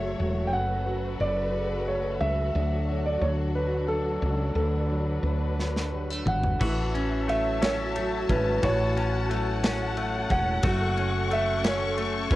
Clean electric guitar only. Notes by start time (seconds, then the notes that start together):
6.61 E3 F#4
6.94 C#4
7.28 A3
7.62 C#4
7.95 A3
8.30 C#4
8.63 E3 F#4
8.97 C#4
9.30 A3
9.64 C#4
9.97 A3
10.31 C#4
10.64 A3 F#4
10.97 C#4
11.31 A3
11.64 C#4
11.98 A3
12.32 C#4